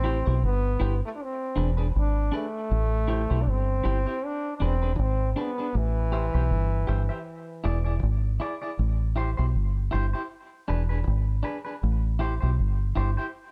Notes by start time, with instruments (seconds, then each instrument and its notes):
Already playing: fingered electric bass A1, trombone C4
0.04 clean electric guitar E4 G4 C5
0.26 fingered electric bass B1, clean electric guitar E4 G4 C5
0.43 fingered electric bass G1, trombone B3
0.80 fingered electric bass G1, clean electric guitar E4 G4 C5
1.05 trombone A3
1.15 trombone D4
1.22 trombone C4
1.56 fingered electric bass E1, clean electric guitar D4 G#4 B4
1.77 clean electric guitar D4 G#4 B4
1.96 fingered electric bass G#1, trombone D4
2.32 trombone A3, clean electric guitar D4 G#4 B4
2.71 fingered electric bass A1
3.08 clean electric guitar E4 G4 C5
3.30 fingered electric bass B1, clean electric guitar E4 G4 C5
3.42 trombone D4
3.47 fingered electric bass G1, trombone C4
3.84 fingered electric bass G1, clean electric guitar E4 G4 C5
4.06 clean electric guitar E4 G4 C5
4.25 trombone D4
4.57 trombone D4, clean electric guitar D4
4.61 fingered electric bass E1, trombone C4, clean electric guitar G#4 B4
4.82 clean electric guitar D4 G#4 B4
4.95 fingered electric bass G#1, trombone D4
5.00 trombone C4
5.33 trombone C4, clean electric guitar D4
5.37 trombone B3, clean electric guitar G#4 B4
5.58 clean electric guitar D4 G#4 B4
5.75 fingered electric bass A1, trombone E3
6.12 clean electric guitar G4 C5 E5
6.34 fingered electric bass B1, clean electric guitar G4 C5 E5
6.51 fingered electric bass G1
6.87 fingered electric bass G1, clean electric guitar G4 C5 E5
7.09 clean electric guitar G4 C5 E5
7.64 fingered electric bass E1, clean electric guitar E4 G#4 D5
7.85 clean electric guitar E4 G#4 D5
8.03 fingered electric bass G#1
8.40 clean electric guitar E4 G#4 D5
8.62 clean electric guitar E4 G#4 D5
8.79 fingered electric bass A1
9.16 clean electric guitar E4 G4 C5
9.37 fingered electric bass B1, clean electric guitar E4 G4 C5
9.55 fingered electric bass G1
9.91 fingered electric bass G1, clean electric guitar E4 G4 C5
10.13 clean electric guitar E4 G4 C5
10.68 fingered electric bass E1, clean electric guitar D4 G#4 B4
10.89 clean electric guitar D4 G#4 B4
11.07 fingered electric bass G#1
11.43 clean electric guitar D4 G#4 B4
11.65 clean electric guitar D4 G#4 B4
11.83 fingered electric bass A1
12.19 clean electric guitar E4 G4 C5
12.41 fingered electric bass B1, clean electric guitar E4 G4 C5
12.59 fingered electric bass G1
12.95 fingered electric bass G1, clean electric guitar E4 G4 C5
13.17 clean electric guitar E4 G4 C5